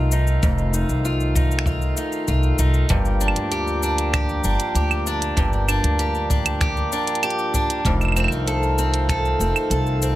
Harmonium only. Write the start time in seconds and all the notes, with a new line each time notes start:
Already playing: D#3 A3 F4
2.89 F3 A#3 G4
7.84 D#3 A3 F4